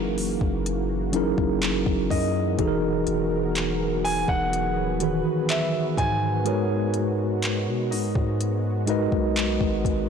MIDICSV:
0, 0, Header, 1, 7, 480
1, 0, Start_track
1, 0, Key_signature, 5, "minor"
1, 0, Tempo, 967742
1, 1284, Time_signature, 4, 2, 24, 8
1, 5005, End_track
2, 0, Start_track
2, 0, Title_t, "Grand piano"
2, 0, Program_c, 0, 0
2, 2006, Note_on_c, 0, 80, 105
2, 2117, Note_off_c, 0, 80, 0
2, 2126, Note_on_c, 0, 78, 100
2, 2705, Note_off_c, 0, 78, 0
2, 2727, Note_on_c, 0, 76, 88
2, 2949, Note_off_c, 0, 76, 0
2, 2966, Note_on_c, 0, 80, 100
2, 3425, Note_off_c, 0, 80, 0
2, 5005, End_track
3, 0, Start_track
3, 0, Title_t, "Harp"
3, 0, Program_c, 1, 46
3, 0, Note_on_c, 1, 78, 69
3, 0, Note_on_c, 1, 82, 53
3, 662, Note_off_c, 1, 78, 0
3, 795, Note_off_c, 1, 82, 0
3, 1045, Note_on_c, 1, 75, 72
3, 1929, Note_off_c, 1, 75, 0
3, 3203, Note_on_c, 1, 68, 75
3, 3923, Note_on_c, 1, 63, 65
3, 4502, Note_off_c, 1, 68, 0
3, 5005, Note_off_c, 1, 63, 0
3, 5005, End_track
4, 0, Start_track
4, 0, Title_t, "Tine electric piano"
4, 0, Program_c, 2, 4
4, 0, Control_c, 2, 64, 127
4, 0, Note_on_c, 2, 54, 77
4, 0, Note_on_c, 2, 61, 74
4, 0, Note_on_c, 2, 63, 75
4, 0, Note_on_c, 2, 64, 71
4, 0, Note_on_c, 2, 68, 70
4, 0, Note_on_c, 2, 70, 84
4, 558, Note_off_c, 2, 54, 0
4, 558, Note_on_c, 2, 54, 91
4, 561, Note_off_c, 2, 61, 0
4, 561, Note_on_c, 2, 61, 81
4, 565, Note_off_c, 2, 63, 0
4, 565, Note_on_c, 2, 63, 87
4, 569, Note_off_c, 2, 64, 0
4, 569, Note_on_c, 2, 64, 84
4, 572, Note_off_c, 2, 68, 0
4, 572, Note_on_c, 2, 68, 83
4, 576, Note_off_c, 2, 70, 0
4, 576, Note_on_c, 2, 70, 98
4, 1031, Note_off_c, 2, 54, 0
4, 1033, Note_off_c, 2, 61, 0
4, 1035, Note_off_c, 2, 63, 0
4, 1037, Note_off_c, 2, 64, 0
4, 1039, Note_off_c, 2, 68, 0
4, 1041, Note_off_c, 2, 70, 0
4, 1276, Note_on_c, 2, 52, 91
4, 1281, Note_on_c, 2, 63, 89
4, 1286, Note_on_c, 2, 66, 84
4, 1289, Control_c, 2, 64, 0
4, 1290, Note_on_c, 2, 68, 85
4, 1295, Note_on_c, 2, 69, 82
4, 1322, Note_off_c, 2, 69, 0
4, 1327, Note_on_c, 2, 70, 103
4, 1388, Control_c, 2, 64, 127
4, 1908, Note_off_c, 2, 52, 0
4, 1910, Note_off_c, 2, 63, 0
4, 1913, Note_off_c, 2, 66, 0
4, 1915, Note_off_c, 2, 68, 0
4, 1933, Note_off_c, 2, 70, 0
4, 2477, Note_on_c, 2, 52, 78
4, 2482, Note_on_c, 2, 51, 74
4, 2486, Note_on_c, 2, 66, 74
4, 2491, Note_on_c, 2, 68, 69
4, 2496, Note_on_c, 2, 71, 85
4, 2951, Note_off_c, 2, 52, 0
4, 2953, Note_off_c, 2, 51, 0
4, 2956, Note_off_c, 2, 66, 0
4, 2958, Note_off_c, 2, 68, 0
4, 2960, Note_off_c, 2, 71, 0
4, 3197, Note_on_c, 2, 56, 77
4, 3200, Note_on_c, 2, 63, 69
4, 3204, Note_on_c, 2, 66, 71
4, 3207, Note_on_c, 2, 70, 73
4, 3211, Control_c, 2, 64, 0
4, 3211, Note_on_c, 2, 71, 73
4, 3214, Note_on_c, 2, 73, 87
4, 3305, Control_c, 2, 64, 127
4, 3828, Note_off_c, 2, 56, 0
4, 3829, Note_off_c, 2, 63, 0
4, 3831, Note_off_c, 2, 66, 0
4, 3833, Note_off_c, 2, 70, 0
4, 3835, Note_off_c, 2, 71, 0
4, 3837, Note_off_c, 2, 73, 0
4, 4397, Note_on_c, 2, 56, 94
4, 4401, Note_on_c, 2, 63, 83
4, 4404, Note_on_c, 2, 66, 84
4, 4408, Note_on_c, 2, 70, 84
4, 4412, Note_on_c, 2, 71, 88
4, 4415, Note_on_c, 2, 75, 103
4, 4871, Note_off_c, 2, 56, 0
4, 4873, Note_off_c, 2, 63, 0
4, 4875, Note_off_c, 2, 66, 0
4, 4877, Note_off_c, 2, 70, 0
4, 4879, Note_off_c, 2, 71, 0
4, 4880, Note_off_c, 2, 75, 0
4, 5005, End_track
5, 0, Start_track
5, 0, Title_t, "Analog synth pad"
5, 0, Program_c, 3, 89
5, 0, Note_on_c, 3, 52, 68
5, 0, Note_on_c, 3, 58, 76
5, 0, Note_on_c, 3, 66, 86
5, 1265, Note_off_c, 3, 52, 0
5, 1265, Note_off_c, 3, 58, 0
5, 1284, Note_on_c, 3, 54, 80
5, 1285, Note_on_c, 3, 59, 68
5, 1285, Note_on_c, 3, 68, 74
5, 1285, Note_on_c, 3, 70, 90
5, 2235, Note_off_c, 3, 70, 0
5, 2245, Note_on_c, 3, 71, 79
5, 3185, Note_off_c, 3, 54, 0
5, 3185, Note_off_c, 3, 59, 0
5, 3185, Note_off_c, 3, 68, 0
5, 3195, Note_off_c, 3, 71, 0
5, 3204, Note_on_c, 3, 56, 81
5, 3205, Note_on_c, 3, 59, 72
5, 5005, Note_off_c, 3, 56, 0
5, 5005, Note_off_c, 3, 59, 0
5, 5005, Note_off_c, 3, 66, 0
5, 5005, End_track
6, 0, Start_track
6, 0, Title_t, "808-style bass"
6, 0, Program_c, 4, 38
6, 0, Note_on_c, 4, 30, 101
6, 185, Note_off_c, 4, 30, 0
6, 205, Note_on_c, 4, 30, 102
6, 665, Note_off_c, 4, 30, 0
6, 685, Note_on_c, 4, 30, 107
6, 915, Note_off_c, 4, 30, 0
6, 925, Note_on_c, 4, 30, 97
6, 1040, Note_off_c, 4, 30, 0
6, 1046, Note_on_c, 4, 42, 96
6, 1275, Note_off_c, 4, 42, 0
6, 1285, Note_on_c, 4, 28, 115
6, 1515, Note_off_c, 4, 28, 0
6, 1527, Note_on_c, 4, 28, 99
6, 2106, Note_off_c, 4, 28, 0
6, 2125, Note_on_c, 4, 28, 96
6, 2366, Note_on_c, 4, 27, 104
6, 2374, Note_off_c, 4, 28, 0
6, 2593, Note_off_c, 4, 27, 0
6, 2965, Note_on_c, 4, 44, 101
6, 3806, Note_on_c, 4, 47, 100
6, 3813, Note_off_c, 4, 44, 0
6, 3926, Note_on_c, 4, 44, 93
6, 3934, Note_off_c, 4, 47, 0
6, 4039, Note_off_c, 4, 44, 0
6, 4045, Note_on_c, 4, 44, 98
6, 4506, Note_off_c, 4, 44, 0
6, 4526, Note_on_c, 4, 35, 105
6, 4755, Note_off_c, 4, 35, 0
6, 4766, Note_on_c, 4, 32, 101
6, 4880, Note_off_c, 4, 32, 0
6, 4886, Note_on_c, 4, 32, 107
6, 5005, Note_off_c, 4, 32, 0
6, 5005, End_track
7, 0, Start_track
7, 0, Title_t, "Drums"
7, 88, Note_on_c, 9, 46, 54
7, 138, Note_off_c, 9, 46, 0
7, 204, Note_on_c, 9, 36, 94
7, 254, Note_off_c, 9, 36, 0
7, 328, Note_on_c, 9, 42, 79
7, 378, Note_off_c, 9, 42, 0
7, 561, Note_on_c, 9, 42, 73
7, 611, Note_off_c, 9, 42, 0
7, 684, Note_on_c, 9, 36, 97
7, 734, Note_off_c, 9, 36, 0
7, 803, Note_on_c, 9, 42, 74
7, 808, Note_on_c, 9, 39, 121
7, 852, Note_off_c, 9, 42, 0
7, 858, Note_off_c, 9, 39, 0
7, 924, Note_on_c, 9, 36, 91
7, 973, Note_off_c, 9, 36, 0
7, 1044, Note_on_c, 9, 36, 99
7, 1048, Note_on_c, 9, 46, 75
7, 1094, Note_off_c, 9, 36, 0
7, 1098, Note_off_c, 9, 46, 0
7, 1283, Note_on_c, 9, 42, 70
7, 1284, Note_on_c, 9, 36, 117
7, 1332, Note_off_c, 9, 42, 0
7, 1334, Note_off_c, 9, 36, 0
7, 1521, Note_on_c, 9, 42, 67
7, 1571, Note_off_c, 9, 42, 0
7, 1763, Note_on_c, 9, 42, 71
7, 1769, Note_on_c, 9, 39, 111
7, 1813, Note_off_c, 9, 42, 0
7, 1818, Note_off_c, 9, 39, 0
7, 2009, Note_on_c, 9, 46, 52
7, 2059, Note_off_c, 9, 46, 0
7, 2124, Note_on_c, 9, 36, 94
7, 2173, Note_off_c, 9, 36, 0
7, 2248, Note_on_c, 9, 42, 77
7, 2298, Note_off_c, 9, 42, 0
7, 2481, Note_on_c, 9, 42, 73
7, 2531, Note_off_c, 9, 42, 0
7, 2723, Note_on_c, 9, 42, 72
7, 2729, Note_on_c, 9, 39, 121
7, 2773, Note_off_c, 9, 42, 0
7, 2778, Note_off_c, 9, 39, 0
7, 2964, Note_on_c, 9, 36, 99
7, 2967, Note_on_c, 9, 42, 69
7, 3013, Note_off_c, 9, 36, 0
7, 3017, Note_off_c, 9, 42, 0
7, 3203, Note_on_c, 9, 42, 70
7, 3252, Note_off_c, 9, 42, 0
7, 3441, Note_on_c, 9, 42, 67
7, 3491, Note_off_c, 9, 42, 0
7, 3683, Note_on_c, 9, 42, 75
7, 3689, Note_on_c, 9, 39, 115
7, 3733, Note_off_c, 9, 42, 0
7, 3739, Note_off_c, 9, 39, 0
7, 3929, Note_on_c, 9, 46, 51
7, 3979, Note_off_c, 9, 46, 0
7, 4044, Note_on_c, 9, 36, 98
7, 4094, Note_off_c, 9, 36, 0
7, 4169, Note_on_c, 9, 42, 75
7, 4219, Note_off_c, 9, 42, 0
7, 4402, Note_on_c, 9, 42, 74
7, 4451, Note_off_c, 9, 42, 0
7, 4524, Note_on_c, 9, 36, 96
7, 4574, Note_off_c, 9, 36, 0
7, 4644, Note_on_c, 9, 42, 74
7, 4649, Note_on_c, 9, 39, 116
7, 4693, Note_off_c, 9, 42, 0
7, 4699, Note_off_c, 9, 39, 0
7, 4765, Note_on_c, 9, 36, 91
7, 4814, Note_off_c, 9, 36, 0
7, 4885, Note_on_c, 9, 36, 102
7, 4889, Note_on_c, 9, 42, 72
7, 4934, Note_off_c, 9, 36, 0
7, 4939, Note_off_c, 9, 42, 0
7, 5005, End_track
0, 0, End_of_file